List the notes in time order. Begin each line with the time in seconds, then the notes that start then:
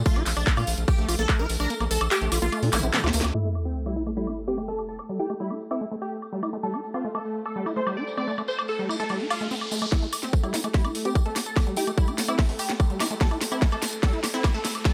Already playing: A3 A4
0.05 A3 F4, kick, closed hi-hat, tambourine
0.16 A#1 F4, closed hi-hat, tambourine, high woodblock
0.26 A#1, clap, open hi-hat, tambourine
0.36 A#1 D4, closed hi-hat, tambourine, high woodblock
0.47 A#3, kick, clap, closed hi-hat, tambourine
0.56 A#2 A#3 F4, closed hi-hat, tambourine, high woodblock
0.67 A#1, open hi-hat, tambourine
0.78 A#1, closed hi-hat, tambourine
0.88 G4, kick, closed hi-hat, tambourine, high woodblock
0.98 A#1 A3, closed hi-hat, tambourine
1.08 A#1 F4, open hi-hat, tambourine, high woodblock
1.18 A#1 A#3 A4, closed hi-hat, tambourine
1.29 A3, kick, clap, closed hi-hat, tambourine, high woodblock
1.39 A#1 F4 A#4, closed hi-hat, tambourine
1.49 A#1, open hi-hat, tambourine
1.60 A#1 D4 A#4, closed hi-hat, tambourine, high woodblock
1.70 A#3, closed hi-hat, tambourine
1.80 A#1 A#3, closed hi-hat, tambourine, high woodblock
1.91 A#1 A4, open hi-hat, tambourine
2.01 A#1, closed hi-hat, high woodblock
2.11 G4, clap, closed hi-hat, tambourine
2.22 A#1 A3, closed hi-hat, tambourine
2.32 A#1 F4, open hi-hat, tambourine, high woodblock
2.42 A#1 A#3 F4, closed hi-hat, tambourine
2.52 A3, closed hi-hat, tambourine, high woodblock
2.62 A#2 F4, open hi-hat, tambourine
2.72 A#1 A#3 E4, clap, open hi-hat, tambourine, zap, high woodblock
2.83 A#1 C4, closed hi-hat, tambourine
2.93 C4, snare, clap, closed hi-hat, tambourine
3.04 D2 F4, snare, closed hi-hat, tambourine, high woodblock
3.13 D2 A#3, open hi-hat, tambourine
3.21 D2 D4, snare, closed hi-hat, tambourine, high woodblock
3.34 A3 E4 A4, crash, tambourine, sub drop, high woodblock
3.45 A3
3.55 tambourine, high woodblock
3.65 C4, tambourine
3.75 tambourine
3.86 G3 E4, high woodblock
3.96 E4, tambourine
4.06 A3, tambourine, high woodblock
4.17 G3 E4, tambourine
4.27 E4, tambourine, high woodblock
4.37 tambourine
4.47 C4 G4, tambourine
4.58 A3, tambourine, high woodblock
4.68 A3 A4
4.78 tambourine, high woodblock
4.88 A4, tambourine
4.99 tambourine, high woodblock
5.09 G3, tambourine
5.19 E4 G4, tambourine
5.30 A3, tambourine, high woodblock
5.40 G3 E4, tambourine
5.50 E4, tambourine, high woodblock
5.61 tambourine
5.71 C4 E4, tambourine, high woodblock
5.81 A3, tambourine
5.91 A3, tambourine
6.02 G4, tambourine, high woodblock
6.11 tambourine
6.22 tambourine, high woodblock
6.32 G3, tambourine
6.43 E4, tambourine, high woodblock
6.53 A3, tambourine
6.63 G3 A4, tambourine, riser
6.74 E4, tambourine, high woodblock
6.84 tambourine
6.94 C4 F4, tambourine, high woodblock
7.04 A3, tambourine
7.15 A3 A4, tambourine, high woodblock
7.25 tambourine
7.35 tambourine
7.45 A4, tambourine, high woodblock
7.56 G3, tambourine
7.66 E4, tambourine, high woodblock
7.76 A3 C5, tambourine
7.87 G3, tambourine, high woodblock
7.97 E4 D5, tambourine
8.07 tambourine
8.17 C4 D5, tambourine, high woodblock
8.28 A3, tambourine
8.38 A3, tambourine, high woodblock
8.48 C5, tambourine
8.59 tambourine, high woodblock
8.68 A4, tambourine
8.79 G3, tambourine
8.89 E4, tambourine, high woodblock
9.00 A3 A4, tambourine
9.09 G3, tambourine, high woodblock
9.20 E4, tambourine
9.30 F4, tambourine, high woodblock
9.40 A3, tambourine
9.51 C4, tambourine
9.61 high woodblock
9.71 A3, tambourine
9.81 A3, tambourine, high woodblock
9.92 A3 E4 A4, kick, snare, closed hi-hat, tambourine, riser, high woodblock
10.02 A3, closed hi-hat, tambourine
10.13 open hi-hat, tambourine, high woodblock
10.23 C4, snare, closed hi-hat, tambourine
10.33 kick, closed hi-hat, tambourine
10.43 G3 E4, closed hi-hat, tambourine, high woodblock
10.54 E4, snare, open hi-hat, tambourine
10.64 A3, closed hi-hat, tambourine, high woodblock
10.74 G3 E4, kick, snare, closed hi-hat, tambourine
10.84 E4, closed hi-hat, tambourine, high woodblock
10.95 open hi-hat, tambourine
11.05 C4 G4, closed hi-hat, tambourine
11.15 A3, kick, closed hi-hat, tambourine, high woodblock
11.26 A3 A4, closed hi-hat, tambourine
11.36 snare, open hi-hat, tambourine, high woodblock
11.46 A4, closed hi-hat, tambourine
11.56 kick, snare, closed hi-hat, tambourine, high woodblock
11.67 G3, closed hi-hat, tambourine
11.76 E4 G4, open hi-hat, tambourine
11.87 A3, closed hi-hat, tambourine, high woodblock
11.98 G3 E4, kick, closed hi-hat, tambourine
12.07 E4, closed hi-hat, tambourine, high woodblock
12.18 snare, open hi-hat, tambourine
12.28 C4 E4, closed hi-hat, high woodblock
12.39 A3, kick, snare, closed hi-hat, tambourine
12.49 A3, open hi-hat, tambourine
12.59 G4, open hi-hat, tambourine, high woodblock
12.69 snare, closed hi-hat, tambourine
12.80 kick, closed hi-hat, tambourine, high woodblock
12.90 G3, closed hi-hat, tambourine
13.00 E4, snare, open hi-hat, tambourine, high woodblock
13.11 A3, closed hi-hat, tambourine
13.20 G3 A4, kick, snare, closed hi-hat, tambourine
13.31 E4, closed hi-hat, tambourine, high woodblock
13.41 snare, open hi-hat, tambourine
13.52 C4 E4, closed hi-hat, tambourine, high woodblock
13.62 A3, kick, snare, closed hi-hat, tambourine
13.71 A3 A4, closed hi-hat, tambourine, high woodblock
13.82 snare, open hi-hat, tambourine
13.93 closed hi-hat, tambourine
14.03 G3 A4, kick, snare, closed hi-hat, tambourine, high woodblock
14.13 E4, closed hi-hat, tambourine
14.24 snare, open hi-hat, tambourine, high woodblock
14.33 C4 E4, closed hi-hat, tambourine
14.44 A3, kick, snare, closed hi-hat, tambourine, high woodblock
14.54 A3 A4, closed hi-hat, tambourine
14.64 snare, open hi-hat, tambourine
14.75 closed hi-hat, tambourine, high woodblock
14.85 G3 A4, kick, snare, closed hi-hat, tambourine